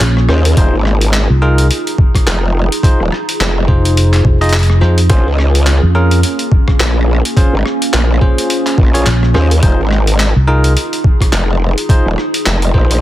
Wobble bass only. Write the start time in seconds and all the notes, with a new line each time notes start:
0.29 D#2
0.57 F1
0.74 G#1
2.27 F1
3.00 D#1
3.40 F1
5.10 A#1
5.27 C#2
6.80 A#1
7.53 G#1
7.93 A#1
8.78 A#1
9.35 D#2
9.63 F1
9.79 G#1
11.32 F1
12.06 D#1
12.46 F1
12.74 A#1